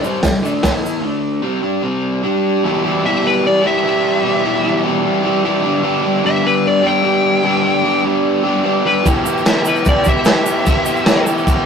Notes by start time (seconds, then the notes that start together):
0.04 C3 G3 C4, shaker
0.23 C3 G3, kick, snare, open hi-hat, shaker
0.43 D3 A3 D4, shaker
0.63 E3 B3 E4, kick, snare, open hi-hat, shaker
0.86 shaker
1.02 D3 A3 D4
1.42 C3 G3 C4
1.61 G3 D4 G4
1.82 C3 G3 C4
2.23 G3 D4 G4
2.63 E2 B2 E3 G3 E4 G4
2.84 E3 G3 E4 G4
3.04 E2 B2 E3 G3 E4 G4 E5
3.23 E3 G3 E4 G4 B4
3.46 D5
3.63 E3 G3 E4 G4
3.67 E5
3.83 E3 G3 E4 G4
4.22 E2 B2 E3 G3 E4 G4
4.43 E3 G3 E4 G4
4.62 E2 B2 E3 G3 E4 G4
4.84 E3 G3 E4 G4
5.24 E3 G3 E4 G4
5.43 E3 G3 E4 G4
5.63 G2 D3 G3 B3 D4 G4
5.82 G2 D3 G3 B3 D4 G4
6.02 G3 B3 D4 G4
6.23 G2 D3 G3 B3 D4 G4 E5
6.43 G3 B3 D4 G4 B4
6.67 D5
6.83 G3 B3 D4 G4
6.87 G5
7.02 G3 B3 D4 G4
7.43 G2 D3 G3 B3 D4 G4
7.63 G3 B3 D4 G4
7.83 G2 D3 G3 B3 D4 G4
8.03 G3 B3 D4 G4
8.43 G3 B3 D4 G4
8.64 G3 B3 D4 G4
8.86 B4
9.04 E3 B3 E4 G4, kick, crash, shaker
9.24 B3 E4 G4, shaker
9.38 shaker
9.45 E3 B3 E4 G4 E5, snare, crash, shaker
9.65 B3 E4 G4 B4, shaker
9.76 shaker
9.85 D5, kick, crash, shaker
10.04 E4 G4, kick, shaker
10.09 B3 E5
10.25 E3 B3 E4 G4, snare, crash, shaker
10.46 shaker
10.65 E3 B3 E4 G4, kick, crash, shaker
10.85 B3 E4 G4, shaker
10.96 shaker
11.06 E3 B3 E4 G4, snare, crash, shaker
11.25 B3 E4 G4, shaker
11.38 shaker
11.47 kick, crash, shaker